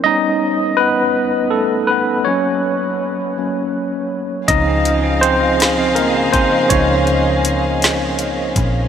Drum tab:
HH |------|------|xxxxxx|xxxxxx|
SD |------|------|---o--|---o--|
BD |------|------|o----o|o----o|